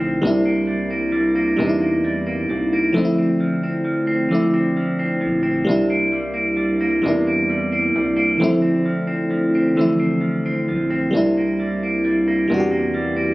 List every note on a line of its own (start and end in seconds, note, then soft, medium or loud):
0.00 0.19 A#1 medium
0.00 0.22 D3 medium
0.00 0.13 F3 medium
0.00 0.31 F3 medium
0.00 0.14 A3 medium
0.00 0.15 C4 medium
0.00 0.45 C4 medium
0.00 0.25 D#4 medium
0.00 0.19 E4 medium
0.22 1.55 C2 loud
0.22 1.57 C3 medium
0.22 1.50 G3 medium
0.22 1.51 A#3 medium
0.22 1.52 D4 medium
0.27 1.53 E4 medium
0.45 0.89 A#3 medium
0.67 1.11 G3 medium
0.91 1.34 A#3 medium
1.12 2.03 G3 medium
1.35 1.80 A#3 soft
1.56 2.46 E2 medium
1.56 2.94 C3 medium
1.56 2.86 G3 medium
1.56 2.87 A#3 medium
1.56 2.87 D4 medium
1.62 1.67 D#4 medium
1.69 2.92 E4 medium
1.81 2.25 A#3 soft
2.04 2.49 G3 medium
2.27 2.72 A#3 medium
2.50 2.92 C2 medium
2.50 3.05 G3 medium
2.73 3.05 A#3 soft
2.93 5.25 D2 loud
2.93 4.30 D3 medium
2.93 4.22 F3 medium
2.93 4.23 A3 medium
2.93 4.24 C4 medium
2.98 3.03 D#4 medium
3.05 4.28 E4 medium
3.18 3.63 C4 medium
3.40 3.83 F3 soft
3.63 4.07 C4 soft
3.85 4.76 F3 soft
4.07 4.53 C4 medium
4.29 5.67 D3 medium
4.29 5.58 F3 medium
4.29 5.59 A3 medium
4.29 5.60 C4 medium
4.35 5.61 E4 medium
4.54 4.99 C4 soft
4.77 5.20 F3 soft
4.99 5.42 C4 medium
5.21 5.64 A#1 medium
5.21 5.76 F3 soft
5.43 5.89 C4 soft
5.65 7.02 C3 medium
5.65 6.94 G3 medium
5.65 6.95 A#3 medium
5.69 7.01 C2 medium
5.69 6.96 D4 medium
5.69 6.97 E4 medium
5.90 6.33 A#3 medium
6.12 6.56 G3 soft
6.34 6.79 A#3 soft
6.57 7.48 G3 medium
6.81 7.26 A#3 medium
7.02 7.92 E2 medium
7.02 8.40 C3 medium
7.02 8.31 G3 medium
7.02 8.32 A#3 medium
7.06 8.33 D4 medium
7.06 8.34 E4 medium
7.27 7.71 A#3 soft
7.50 7.94 G3 medium
7.72 8.15 A#3 soft
7.96 8.37 C2 medium
7.96 8.50 G3 soft
8.17 8.49 A#3 medium
8.38 10.71 D2 loud
8.38 9.76 D3 medium
8.38 8.46 E3 medium
8.38 9.68 A3 medium
8.42 9.70 F3 medium
8.42 9.69 C4 medium
8.42 9.70 E4 medium
8.62 9.07 C4 medium
8.86 9.29 F3 medium
9.07 9.54 C4 medium
9.31 10.20 F3 medium
9.55 9.99 C4 medium
9.75 11.13 D3 medium
9.75 9.83 E3 medium
9.75 11.05 A3 medium
9.75 11.06 C4 medium
9.81 11.07 F3 medium
9.81 11.07 E4 medium
10.00 10.45 C4 medium
10.21 10.67 F3 medium
10.46 10.90 C4 medium
10.69 11.10 A#1 medium
10.69 11.23 F3 medium
10.90 11.37 C4 medium
11.11 12.46 C2 loud
11.11 12.49 C3 medium
11.11 12.40 G3 medium
11.11 12.41 A#3 medium
11.11 12.42 D4 medium
11.17 12.43 E4 medium
11.37 11.82 A#3 soft
11.60 12.04 G3 soft
11.83 12.26 A#3 soft
12.05 12.93 G3 medium
12.28 12.70 A#3 medium
12.48 13.34 E2 medium
12.48 13.34 C3 medium
12.48 13.34 G3 medium
12.48 13.34 A#3 medium
12.52 13.34 D4 medium
12.52 12.58 F#4 medium
12.60 13.34 G4 medium
12.71 13.15 A#3 soft
12.94 13.34 G3 medium
13.16 13.34 A#3 medium